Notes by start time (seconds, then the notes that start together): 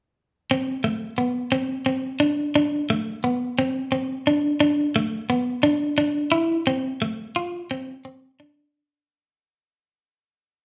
0.51 C4
0.84 A3
1.18 B3
1.52 C4
1.86 C4
2.20 D4
2.56 D4
2.90 A3
3.24 B3
3.59 C4
3.92 C4
4.27 D4
4.60 D4
4.96 A3
5.30 B3
5.63 D4
5.98 D4
6.32 E4
6.67 C4
7.02 A3
7.36 F4
7.71 C4
8.05 C4
8.40 D4